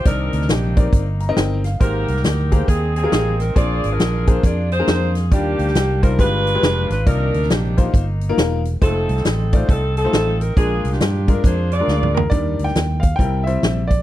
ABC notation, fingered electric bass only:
X:1
M:4/4
L:1/8
Q:"Swing" 1/4=137
K:Eb
V:1 name="Fingered electric bass" clef=bass
C,, D,, B,,,2 G,,,2 G,,,2 | A,,, C,, D,,2 E,,2 =A,,,2 | B,,, A,,, B,,,2 F,,2 F,,2 | E,, D,, C,,2 G,,,2 F,,, A,,, |
C,, D,, B,,,2 G,,,2 _F,,,2 | F,,, C,, =A,,,2 C,,2 A,,,2 | B,,, C,, G,,2 F,,2 D,,2 | E,, D,, E,,2 C,,2 B,,,2 |]